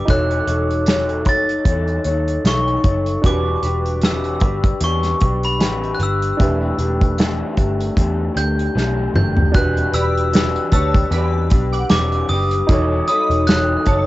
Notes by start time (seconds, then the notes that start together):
Already playing: D6
0.05 E1 E3 D#4 F#4 A4 C#5, kick, closed hi-hat
0.10 C#5 F#6
0.31 closed hi-hat
0.45 E1 D#4 A4 C#5, closed hi-hat
0.71 closed hi-hat
0.85 E3 D#4 A4 C#5, snare, closed hi-hat
1.09 closed hi-hat
1.25 F#1 D#4 A4 C#5, kick, closed hi-hat
1.29 A6
1.49 closed hi-hat
1.64 E2 E3 D#4 A4 C#5, kick, closed hi-hat
1.87 closed hi-hat
2.04 D#2 D#4 A4 C#5, closed hi-hat
2.28 closed hi-hat
2.44 B1 E3 D#4 A4 C#5 C#6, snare, closed hi-hat
2.68 closed hi-hat
2.84 F#1 D#4 A4 C#5, kick, closed hi-hat
3.06 closed hi-hat
3.22 E1 E3 D4 F#4 G4 B4, kick, closed hi-hat
3.26 B4 D6
3.63 E1 D4 G4 B4, closed hi-hat
3.86 closed hi-hat
4.02 E3 D4 G4 B4 E6, snare, closed hi-hat
4.24 closed hi-hat
4.40 G1 G4 B4, kick, closed hi-hat
4.45 D4
4.64 kick, closed hi-hat
4.80 E2 E3 D4 G4 B4 C#6, closed hi-hat
5.03 snare, closed hi-hat
5.20 B1 D4 G4 B4, kick, closed hi-hat
5.43 B5, closed hi-hat
5.59 A1 E3 D4 G4 B4, snare, closed hi-hat
5.84 closed hi-hat
5.95 F#6
5.99 G1 D4 G4 B4, closed hi-hat
6.03 E6
6.22 closed hi-hat
6.37 E1 E3 A3 D4 E4 G4, kick, closed hi-hat
6.42 B4
6.78 E1 A3 D4 G4, closed hi-hat
7.01 kick, closed hi-hat
7.17 E3 A3 D4 G4, snare, closed hi-hat
7.57 G1 A3 D4 G4, kick, closed hi-hat
7.80 closed hi-hat
7.95 E2 E3 A3 D4 G4, kick, closed hi-hat
8.34 D2 A3 D4 G4 G6, closed hi-hat
8.59 closed hi-hat
8.75 B1 E3 A3 D4 G4, snare
9.14 F#1 A3 D4 G4 G6, mid tom
9.37 floor tom
9.52 E1 E3 D4 F#4 G4 F#6, kick, closed hi-hat
9.56 B4
9.77 closed hi-hat
9.92 E1 D4 G4 B4 D5 B5 E6, closed hi-hat
10.17 closed hi-hat
10.32 E3 D4 G4 B4, snare, closed hi-hat
10.56 closed hi-hat
10.72 D2 D4 G4 B4 C#5 A5 E6, kick, closed hi-hat
10.94 kick, closed hi-hat
11.11 E2 E3 D4 G4 B4 D5 B5, closed hi-hat
11.50 B1 D4 G4 B4, kick, closed hi-hat
11.73 F#5 D6, closed hi-hat
11.89 E1 E3 D4 G4 B4 D6, snare, closed hi-hat
12.12 closed hi-hat
12.29 F#1 G4 B4 D#6, open hi-hat
12.33 D4
12.51 closed hi-hat
12.67 E1 E3 D#4 F#4 A4 C#5, kick, closed hi-hat
12.72 C#5
13.08 D#4 A4 C#5 D#5 B5 D#6, closed hi-hat
13.30 E1, closed hi-hat
13.47 E3 D#4 A4 C#5 F#6, snare, closed hi-hat
13.86 F#1 D#4 A4 C#5 A5, kick, closed hi-hat